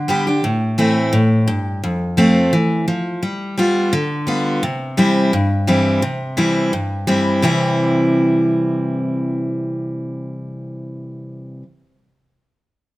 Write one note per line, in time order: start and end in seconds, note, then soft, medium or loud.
0.00 0.40 D3 medium
0.08 0.26 G3 medium
0.08 0.27 B3 medium
0.08 0.27 D4 medium
0.08 0.26 G4 medium
0.27 0.43 D4 soft
0.27 0.43 G4 medium
0.44 1.10 A2 medium
0.78 1.12 E3 medium
0.78 1.12 A3 medium
0.78 1.12 C4 medium
0.78 1.12 E4 medium
1.13 1.46 A2 medium
1.48 1.81 G2 medium
1.84 2.50 F2 medium
2.17 2.51 F3 medium
2.17 2.51 A3 medium
2.17 2.52 C4 loud
2.17 2.52 F4 loud
2.53 2.86 E3 medium
2.88 3.21 F3 medium
3.23 3.56 G3 medium
3.58 3.91 G3 medium
3.58 3.92 B3 medium
3.58 3.92 F4 medium
3.93 4.60 D3 medium
4.27 4.61 G3 medium
4.27 4.61 B3 medium
4.27 4.61 F4 medium
4.63 5.30 C3 medium
4.97 5.31 E3 medium
4.97 5.31 G3 medium
4.97 5.32 C4 medium
4.97 5.32 E4 loud
5.33 6.00 G2 medium
5.67 6.01 E3 medium
5.67 6.01 G3 medium
5.67 6.02 C4 medium
5.67 6.02 E4 medium
6.02 6.70 C3 medium
6.37 6.71 E3 medium
6.37 6.71 G3 medium
6.37 6.71 C4 medium
6.37 6.72 E4 medium
6.73 7.40 G2 medium
7.07 7.41 E3 medium
7.07 7.41 G3 medium
7.07 7.42 C4 medium
7.07 7.42 E4 loud
7.42 11.62 C3 medium
7.42 11.63 E3 medium
7.42 11.63 G3 medium
7.42 11.64 C4 loud
7.42 11.65 E4 medium